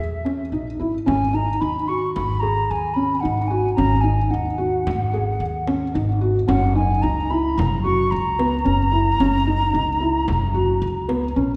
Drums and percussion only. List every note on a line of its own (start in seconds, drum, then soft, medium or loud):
0.26 frame drum soft
0.55 frame drum soft
1.08 frame drum soft
1.35 frame drum soft
2.16 frame drum medium
2.43 frame drum soft
3.78 frame drum medium
4.06 frame drum soft
4.87 frame drum medium
5.14 frame drum soft
5.67 frame drum soft
6.48 frame drum medium
6.77 frame drum soft
7.59 frame drum medium
7.86 frame drum soft
8.39 frame drum soft
9.20 frame drum medium
9.74 frame drum soft
10.28 frame drum medium
10.82 frame drum soft
11.09 frame drum soft